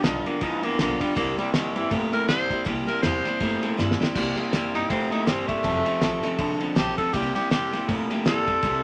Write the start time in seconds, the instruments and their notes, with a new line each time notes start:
0.03 upright bass B1, steel-string acoustic guitar G2 D3 F3 B3 F4 G4, clean electric guitar G2 D3, tenor saxophone D#4, snare, ride
0.26 clean electric guitar G2 D3, steel-string acoustic guitar F3 B3 F4 G4, tenor saxophone A#3, ride
0.41 upright bass D2, clean electric guitar G2 E3, steel-string acoustic guitar F3 B3 F4 G4, tenor saxophone D#4, kick, ride
0.63 upright bass F2, clean electric guitar G2 E3, steel-string acoustic guitar F3 B3 F4 G4, tenor saxophone A#3, ride
0.79 upright bass B1, clean electric guitar G2 D3, steel-string acoustic guitar G2 D3 F3 B3 F4 G4, tenor saxophone A#3, snare, ride
1.00 clean electric guitar G2 D3, steel-string acoustic guitar F3 B3 F4 G4, tenor saxophone G3, kick, ride
1.15 upright bass C2, steel-string acoustic guitar C3 G3 A#3 E4 G4, clean electric guitar C3 G3, tenor saxophone A#3, kick, ride
1.38 clean electric guitar C3 G3, tenor saxophone G3, steel-string acoustic guitar A#3 E4 G4, muted upright bass stroke, ride
1.53 upright bass F2, clean electric guitar C3 G3, steel-string acoustic guitar C3 G3 A#3 E4 G4, tenor saxophone D#3, snare, ride
1.75 upright bass G2, clean electric guitar C3 G3, tenor saxophone E3, steel-string acoustic guitar A#3 E4 G4, ride
1.90 upright bass A#2, clean electric guitar C3 A3, steel-string acoustic guitar G3 A#3 E4 G4, kick, ride
2.12 clean electric guitar C3 A3, steel-string acoustic guitar A#3 E4 G4, tenor saxophone A#4, muted upright bass stroke, ride
2.28 upright bass G2, steel-string acoustic guitar C3 G3 A#3 E4 G4, clean electric guitar C3 G3, tenor saxophone C5, snare, ride
2.50 upright bass E2, clean electric guitar C3 G3, steel-string acoustic guitar A#3 E4 G4, kick, ride
2.64 upright bass C2, steel-string acoustic guitar C3 G3 A#3 E4 G4, clean electric guitar C3 G3, kick, ride
2.86 clean electric guitar C3 G3, steel-string acoustic guitar A#3 E4 G4, tenor saxophone A#4, muted upright bass stroke, ride
3.03 upright bass E2, steel-string acoustic guitar C3 G3 A#3 E4 G4, clean electric guitar C3 G3, tenor saxophone C5, snare, ride
3.25 clean electric guitar C3 G3, steel-string acoustic guitar A#3 E4 G4, snare, ride
3.40 upright bass G2, clean electric guitar C3 A3, steel-string acoustic guitar G3 A#3 E4 G4, kick, ride
3.63 clean electric guitar C3 A3, steel-string acoustic guitar A#3 E4 G4, ride
3.78 upright bass G2, steel-string acoustic guitar C3 G3 A#3 E4 G4, clean electric guitar C3 G3, snare
3.91 snare
3.99 clean electric guitar C3 G3, steel-string acoustic guitar A#3 E4 G4, muted upright bass stroke, snare
4.15 upright bass C2, clean electric guitar C3 G3, steel-string acoustic guitar C3 G3 A#3 E4 G4, kick, crash
4.36 clean electric guitar C3 G3, steel-string acoustic guitar A#3 E4 G4, ride
4.52 upright bass F2, clean electric guitar C3 G3, steel-string acoustic guitar C3 G3 A#3 E4 G4, snare, ride
4.74 upright bass G2, clean electric guitar C3 G3, steel-string acoustic guitar A#3 E4 G4, tenor saxophone D#4, ride
4.89 upright bass A#2, clean electric guitar C3 A3, steel-string acoustic guitar G3 A#3 E4 G4, tenor saxophone C4, kick, ride
5.11 clean electric guitar C3 A3, steel-string acoustic guitar A#3 E4 G4, tenor saxophone D#4, muted upright bass stroke, ride
5.26 upright bass G2, steel-string acoustic guitar C3 G3 A#3 E4 G4, clean electric guitar C3 G3, tenor saxophone C4, snare, ride
5.48 upright bass G2, clean electric guitar C3 G3, tenor saxophone A3, steel-string acoustic guitar A#3 E4 G4, kick, ride
5.63 upright bass F1, clean electric guitar F2 C3, steel-string acoustic guitar F3 C4 D#4 A4, kick, ride
5.85 clean electric guitar F2 C3, steel-string acoustic guitar C4 D#4 A4, ride
6.00 upright bass A1, clean electric guitar F2 C3, steel-string acoustic guitar F3 C4 D#4 A4, snare, ride
6.23 clean electric guitar F2 C3, steel-string acoustic guitar C4 D#4 A4, muted upright bass stroke, snare, ride
6.38 upright bass C2, clean electric guitar F2 D3, steel-string acoustic guitar F3 C4 D#4 A4, kick, ride
6.60 upright bass D#2, clean electric guitar F2 D3, steel-string acoustic guitar C4 D#4 A4, ride
6.75 upright bass A#1, clean electric guitar F2 C3, steel-string acoustic guitar F3 C4 D#4 A4, tenor saxophone G4, snare, ride
6.98 clean electric guitar F2 C3, steel-string acoustic guitar C4 D#4 A4, tenor saxophone A4, kick, ride
7.12 upright bass C2, steel-string acoustic guitar C3 G3 A#3 E4 G4, clean electric guitar C3 G3, tenor saxophone G4, kick, ride
7.35 clean electric guitar C3 G3, steel-string acoustic guitar A#3 E4 G4, tenor saxophone G4, muted upright bass stroke, ride
7.50 upright bass F2, steel-string acoustic guitar C3 G3 A#3 E4 G4, clean electric guitar C3 G3, tenor saxophone G4, snare, ride
7.72 upright bass G2, clean electric guitar C3 G3, steel-string acoustic guitar A#3 E4 G4, snare, ride
7.88 upright bass A#2, clean electric guitar C3 A3, steel-string acoustic guitar G3 A#3 E4 G4, kick, ride
8.10 clean electric guitar C3 A3, steel-string acoustic guitar A#3 E4 G4, muted upright bass stroke, ride
8.25 upright bass G2, steel-string acoustic guitar C3 G3 A#3 E4 G4, clean electric guitar C3 G3, tenor saxophone A4, snare, ride
8.46 upright bass E2, clean electric guitar C3 G3, steel-string acoustic guitar A#3 E4 G4, kick, ride
8.63 upright bass C2, clean electric guitar C3 G3, steel-string acoustic guitar C3 G3 A#3 E4 G4, kick, ride